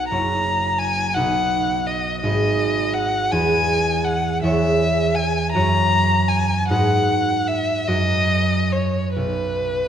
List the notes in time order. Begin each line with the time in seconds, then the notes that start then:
Already playing: B1 D#4 F#4 B4
0.08 F#1 E4 F#4 A#5
0.13 C#5
0.78 G#5
1.14 B1 D#4 F#4 B4 F#5
1.86 D#5
2.21 G#1 D#4 G#4 D#5
2.25 B4
2.94 F#5
3.32 E2 E4 G#4 B4 G#5
4.04 F#5
4.42 E2 E4 G#4 C#5 E5
5.15 G#5
5.52 F#2 E4 F#4 A#5
5.56 C#5
6.28 G#5
6.68 G#2 D#4 F#4 B4 F#5
7.47 E5
7.87 F#2 F#4 A#4 D#5
8.72 C#5
9.15 B1 B4